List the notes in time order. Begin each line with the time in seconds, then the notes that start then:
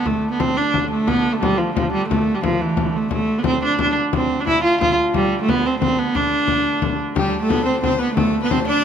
Already playing: D3 A3
0.06 A3, frame drum
0.31 B3
0.40 C4, frame drum
0.57 D4
0.74 frame drum
0.91 A3, frame drum
1.07 B3, frame drum
1.33 A3
1.42 G3, frame drum
1.57 F3
1.76 F3, frame drum
1.93 G3, frame drum
2.09 A3, frame drum
2.35 G3
2.43 F3, frame drum
2.61 E3, frame drum
2.77 frame drum
2.96 A3
3.11 D3 A3, frame drum
3.39 B3
3.44 C4, frame drum
3.65 D4
3.79 D4, frame drum
3.96 frame drum
4.13 C4, frame drum
4.40 D4
4.47 E4, frame drum
4.64 F4
4.81 F4, frame drum
4.99 frame drum
5.14 G3, frame drum
5.41 A3
5.49 B3, frame drum
5.66 C4
5.81 C4, frame drum
5.99 B3, frame drum
6.15 D4, frame drum
6.48 frame drum
6.66 frame drum
6.82 frame drum
7.15 D3 G3 A3 G4, frame drum
7.41 A3 A4
7.49 B3, frame drum
7.66 C4 C5
7.82 C4 C5, frame drum
7.98 B3 B4, frame drum
8.15 A3 A4, frame drum
8.42 B3 B4
8.51 C4 C5, frame drum
8.67 D4 D5